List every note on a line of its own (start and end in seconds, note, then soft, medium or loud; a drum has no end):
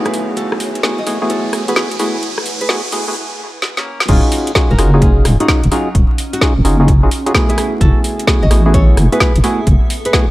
0.00 0.81 A3 loud
0.00 0.81 B3 medium
0.00 0.13 D#4 medium
0.00 0.81 E4 medium
0.00 0.81 F#4 medium
0.00 1.51 F#4 medium
0.00 0.81 G#4 loud
0.00 1.53 C#5 medium
0.00 0.13 F5 medium
0.00 3.16 G#5 medium
0.00 riser medium
0.05 0.28 G#4 medium
0.05 0.28 B4 loud
0.05 cross-stick medium
0.05 closed hi-hat soft
0.13 3.16 E4 medium
0.13 open hi-hat loud
0.26 3.16 A3 medium
0.26 3.16 B4 medium
0.36 0.54 F#4 medium
0.36 0.54 A4 loud
0.36 closed hi-hat medium
0.49 3.16 F#5 medium
0.49 cross-stick medium
0.60 open hi-hat loud
0.75 closed hi-hat medium
0.83 1.01 A3 medium
0.83 1.01 B3 medium
0.83 1.01 E4 medium
0.83 1.01 F#4 medium
0.83 1.01 G#4 medium
0.83 snare loud
0.98 1.21 F#4 medium
0.98 1.21 D#5 medium
1.07 1.19 A3 medium
1.07 1.19 B3 medium
1.07 1.19 E4 medium
1.07 1.19 F#4 medium
1.07 1.19 G#4 medium
1.07 open hi-hat loud
1.22 1.65 A3 medium
1.22 1.65 B3 medium
1.22 1.65 E4 medium
1.22 1.65 F#4 medium
1.22 1.65 G#4 loud
1.30 1.53 A4 medium
1.30 1.53 C#5 medium
1.30 closed hi-hat medium
1.53 cross-stick medium
1.53 open hi-hat loud
1.68 1.75 A3 medium
1.68 1.75 B3 medium
1.68 1.75 E4 medium
1.68 1.75 F#4 medium
1.68 1.75 G#4 medium
1.68 1.91 G#4 medium
1.68 1.91 B4 medium
1.68 closed hi-hat medium
1.76 1.89 A3 medium
1.76 1.89 B3 medium
1.76 1.89 E4 medium
1.76 1.89 F#4 medium
1.76 1.89 G#4 medium
1.76 snare loud
1.91 closed hi-hat soft
1.99 2.17 A3 medium
1.99 2.17 B3 medium
1.99 2.17 E4 medium
1.99 2.23 E4 medium
1.99 2.17 F#4 medium
1.99 2.23 G#4 medium
1.99 2.17 G#4 loud
1.99 open hi-hat loud
2.23 closed hi-hat medium
2.38 cross-stick medium
2.46 open hi-hat loud
2.61 2.74 G#4 medium
2.61 2.74 B4 medium
2.61 closed hi-hat medium
2.69 2.82 A3 loud
2.69 2.82 B3 medium
2.69 2.82 E4 medium
2.69 2.82 F#4 medium
2.69 2.82 G#4 loud
2.69 snare loud
2.92 3.05 A3 medium
2.92 3.05 B3 medium
2.92 3.05 E4 medium
2.92 3.05 F#4 medium
2.92 3.05 G#4 medium
2.92 open hi-hat loud
3.08 3.16 A3 medium
3.08 3.16 B3 medium
3.08 3.16 E4 medium
3.08 3.16 F#4 medium
3.08 3.16 G#4 medium
3.62 snare medium
3.77 4.00 A#3 medium
3.77 4.00 C#4 loud
3.77 snare medium
4.00 snare medium
4.08 4.21 D#1 loud
4.08 4.52 C#4 loud
4.08 4.27 C#4 medium
4.08 8.33 C#4 medium
4.08 4.52 D#4 loud
4.08 4.52 F4 medium
4.08 4.27 F4 loud
4.08 4.52 F#4 loud
4.08 4.52 G#4 loud
4.08 kick loud
4.08 closed hi-hat medium
4.08 crash loud
4.32 open hi-hat loud
4.47 closed hi-hat medium
4.55 4.73 C#4 medium
4.55 4.73 D#4 medium
4.55 4.73 F4 medium
4.55 4.73 F#4 medium
4.55 4.73 G#4 medium
4.55 kick loud
4.55 snare loud
4.70 4.77 D#1 loud
4.70 4.93 F#4 medium
4.70 4.93 A#4 medium
4.78 5.22 F#1 medium
4.78 4.91 C#4 medium
4.78 4.91 D#4 medium
4.78 4.91 F4 medium
4.78 4.91 F#4 medium
4.78 4.91 G#4 medium
4.78 cross-stick medium
4.78 open hi-hat loud
4.94 5.37 C#4 medium
4.94 5.37 D#4 medium
4.94 5.37 F4 medium
4.94 5.37 F#4 medium
4.94 5.37 G#4 loud
5.02 5.25 F4 medium
5.02 5.25 G#4 medium
5.02 kick loud
5.02 closed hi-hat medium
5.25 5.37 D#1 loud
5.25 cross-stick medium
5.25 open hi-hat loud
5.40 5.47 C#4 medium
5.40 5.47 D#4 medium
5.40 5.63 D#4 medium
5.40 5.47 F4 medium
5.40 5.47 F#4 medium
5.40 5.63 F#4 loud
5.40 5.47 G#4 medium
5.40 closed hi-hat medium
5.48 5.61 C#4 medium
5.48 5.61 D#4 medium
5.48 5.61 F4 medium
5.48 5.61 F#4 medium
5.48 5.61 G#4 medium
5.48 kick loud
5.48 snare loud
5.63 5.70 D#1 medium
5.63 closed hi-hat medium
5.71 5.95 F#3 medium
5.71 5.89 C#4 medium
5.71 5.89 D#4 medium
5.71 5.95 D#4 medium
5.71 5.89 F4 medium
5.71 5.89 F#4 medium
5.71 5.89 G#4 loud
5.71 open hi-hat loud
5.95 6.07 D#1 loud
5.95 kick loud
5.95 closed hi-hat medium
6.18 open hi-hat loud
6.33 6.46 D#4 medium
6.33 6.46 F#4 medium
6.33 closed hi-hat medium
6.41 6.54 C#4 medium
6.41 6.54 D#4 medium
6.41 6.54 F4 medium
6.41 6.54 F#4 medium
6.41 6.54 G#4 loud
6.41 kick loud
6.41 snare loud
6.57 6.63 D#1 loud
6.65 7.08 F#1 medium
6.65 6.78 C#4 medium
6.65 6.78 D#4 medium
6.65 6.77 F4 medium
6.65 6.77 F#4 medium
6.65 6.78 G#4 loud
6.65 open hi-hat loud
6.80 6.92 C#4 medium
6.80 6.92 D#4 medium
6.80 6.92 F4 medium
6.80 6.92 F#4 medium
6.80 6.92 G#4 medium
6.88 kick loud
6.88 closed hi-hat medium
7.03 7.10 C#4 medium
7.03 7.10 D#4 medium
7.03 7.10 F4 medium
7.03 7.10 F#4 medium
7.03 7.10 G#4 medium
7.11 open hi-hat loud
7.26 7.33 C#4 medium
7.26 7.33 D#4 medium
7.26 7.33 F4 medium
7.26 7.33 F#4 medium
7.26 7.33 G#4 medium
7.26 closed hi-hat medium
7.34 8.25 A3 loud
7.34 8.25 B3 medium
7.34 8.25 E4 medium
7.34 8.25 F#4 medium
7.34 8.25 G#4 loud
7.34 kick loud
7.34 snare loud
7.49 7.72 E4 medium
7.49 7.72 G#4 loud
7.49 closed hi-hat medium
7.58 10.31 B3 medium
7.58 cross-stick medium
7.58 open hi-hat loud
7.79 7.93 F#1 loud
7.79 7.98 F#4 medium
7.79 7.99 A4 loud
7.79 10.31 A4 medium
7.79 10.31 E5 medium
7.79 kick loud
7.79 closed hi-hat medium
8.04 open hi-hat loud
8.19 closed hi-hat medium
8.27 8.45 A3 medium
8.27 8.45 B3 medium
8.27 8.45 E4 medium
8.27 8.45 F#4 medium
8.27 8.45 G#4 medium
8.27 kick loud
8.27 snare loud
8.42 8.49 F#1 loud
8.42 8.65 F#4 medium
8.42 8.66 D#5 medium
8.51 8.94 A1 medium
8.51 8.63 A3 medium
8.51 8.63 B3 medium
8.51 8.63 E4 medium
8.51 8.63 F#4 medium
8.51 8.63 G#4 medium
8.51 cross-stick medium
8.51 open hi-hat loud
8.66 9.09 A3 medium
8.66 9.09 B3 medium
8.66 9.09 E4 medium
8.66 9.09 F#4 medium
8.66 9.09 G#4 loud
8.74 8.97 A4 medium
8.74 8.97 C#5 medium
8.74 kick loud
8.74 closed hi-hat medium
8.97 9.09 F#1 loud
8.97 cross-stick medium
8.97 open hi-hat loud
9.12 9.19 A3 medium
9.12 9.19 B3 medium
9.12 9.19 E4 medium
9.12 9.19 F#4 medium
9.12 9.35 G#4 medium
9.12 9.19 G#4 medium
9.12 9.35 B4 loud
9.12 closed hi-hat medium
9.20 9.33 A3 medium
9.20 9.33 B3 medium
9.20 9.33 E4 medium
9.20 9.33 F#4 medium
9.20 9.33 G#4 medium
9.20 kick loud
9.20 snare loud
9.35 9.42 F#1 loud
9.35 closed hi-hat soft
9.44 9.61 A3 medium
9.44 9.61 B3 medium
9.44 9.67 E4 medium
9.44 9.61 E4 medium
9.44 9.61 F#4 medium
9.44 9.67 G#4 loud
9.44 9.61 G#4 loud
9.44 open hi-hat loud
9.67 9.79 F#1 loud
9.67 kick loud
9.67 closed hi-hat medium
9.90 open hi-hat loud
10.05 10.18 G#4 medium
10.05 10.18 B4 medium
10.05 closed hi-hat medium
10.13 10.26 A3 loud
10.13 10.26 B3 medium
10.13 10.26 E4 medium
10.13 10.26 F#4 medium
10.13 10.26 G#4 loud
10.13 kick loud
10.13 snare loud